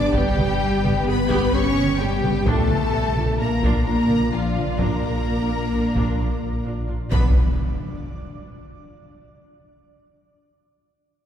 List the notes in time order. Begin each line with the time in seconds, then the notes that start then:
Already playing: G1 D3 B3 D4 G4 B4 D5 D6
0.14 G1 G3 B3 G4 G5, taiko
0.37 G1 B3 G4, taiko mid
0.84 G1 B3 G4, taiko mid
1.07 G1 B3 G4 B4 B5
1.30 G1 B3 G4, taiko
1.53 G1 B3 C#4 G4 C#5 C#6
1.77 taiko mid
2.00 G1 G3 B3 G4 G5
2.23 G1 B3 G4, taiko mid
2.46 A#1 F3 A3 D4 F4 A4 D5 A5, taiko
2.70 A#1 D4 F4, taiko mid
3.16 A#1 D4 F4, taiko mid
3.39 A#1 A#3 D4 F4 A#4 A#5
3.63 A#1 D4 F4, taiko
3.85 A#1 A#3 D4 F4 A#4 A#5
4.10 taiko mid
4.32 A#1 F3 D4 F4 F5
4.56 A#1 D4 F4, taiko mid
4.79 A#1 A#3 D4 F4 A#4 A#5, taiko
5.02 A#1 D4 F4
5.49 A#1 D4 F4
5.73 A#1 D4 F4
5.95 A#1 D4 F4, taiko
6.19 A#1 D4 F4
6.66 A#1 D4 F4
6.88 A#1 D4 F4
7.11 B1 B3 D4 B4 B5, taiko, impact